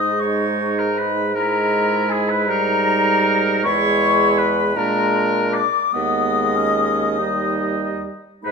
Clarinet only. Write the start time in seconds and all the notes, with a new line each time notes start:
Already playing: D#4
1.36 E4
2.49 D#4
3.66 E4
4.77 D4
5.93 B3
6.56 C#4
7.19 D#4
8.43 D#4